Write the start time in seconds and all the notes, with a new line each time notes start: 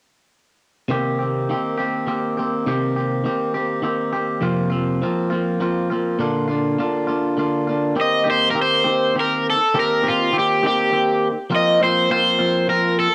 0.88 C3 D#3 A#3 C4 G4
1.19 A#3 C4 G4
1.49 D#3 A#3 C4 G4
1.78 A#3 C4 G4
2.07 D#3 A#3 C4 G4
2.37 A#3 C4 G4
2.67 C3 D#3 A#3 C4 G4
2.96 A#3 C4 G4
3.24 D#3 A#3 C4 G4
3.54 A#3 C4 G4
3.82 D#3 A#3 C4 G4
4.13 A#3 C4 G4
4.41 F2 C3 F3 A#3 C4 F4
4.70 F3 A#3 C4 F4
5.02 F3 A#3 C4 F4
5.30 F3 A#3 C4 F4
5.60 F3 A#3 C4 F4
5.90 F3 A#3 C4 F4
6.19 A#2 D3 A#3 D4 F4
6.48 A#3 D4 F4
6.79 D3 A#3 D4 F4
7.07 A#3 D4 F4
7.37 D3 A#3 D4 F4
7.67 A#3 D4 F4
7.95 D#3 A#3 C4 G4
8.01 D#5
8.24 D#3 A#3 C4 G4
8.30 C5
8.51 D#3 A#3 A#4
8.55 C4 G4
8.62 C5
8.84 D#3 A#3 C4 G4
9.15 D#3 A#3 C4 G4
9.21 A#4
9.50 A4
9.74 D#3 A#3 C4 G4
9.80 A#4
10.03 D#3 A#3 C4 G4
10.08 F4
10.32 D#3 A#3 C4 G4
10.39 G4
10.63 D#3 A#3 C4 G4
10.92 D#3 A#3 C4 G4
11.50 F3 A#3 C4 F4
11.56 D#5
11.80 F3 A#3 C4 F4 C5
12.10 F3 A#3 C4 F4 C5
12.39 F3 A#3 C4 F4
12.68 F3 A#3 C4 F4 A#4
13.00 A4